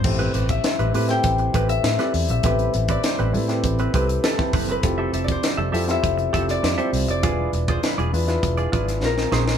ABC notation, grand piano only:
X:1
M:4/4
L:1/16
Q:1/4=100
K:Am
V:1 name="Grand piano"
[CEGAc]4- [CEGAc] z [CEGAB] [CEGAc]2 z [CEGAB]2 z [CEGAd]2 z | [B,CEGAB]4- [B,CEGAB] z [CEGAB] [CEGAB]2 z [CEGAB]2 z [CEGAB]2 z | [CEFGA]4- [CEFGA] z [CEFGA] [CEFGA]2 z [CEFGA]2 z [CEFGc]2 z | [DEF^GB]4- [DEFGB] z [DEFGB] [DEFGB]2 z [DEFGB]2 [C_DF_A_B] [CDFAB]2 z |]